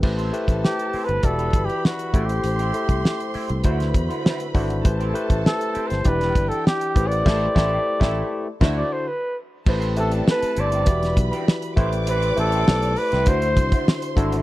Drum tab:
CC |x---------------|----------------|----------------|x--------x------|
HH |-xxx-xoxxxxx-xxx|xxxx-xoxxxxx-xox|xxxx-xxxxxxx-xxx|----------------|
SD |----o-------o---|----o----o--o---|----o--o-o--o---|o-o--o---o------|
BD |o--o----o-o---o-|---o----o-o---o-|o--o----o-o---o-|o-o--o---o------|

CC |x---------------|----------------|
HH |-xxx-xxxxxxx-xxx|xxxx-xoxxxxx-xxx|
SD |----o----o--o---|----o--o----o---|
BD |o-------o-o---o-|--------o-oo--o-|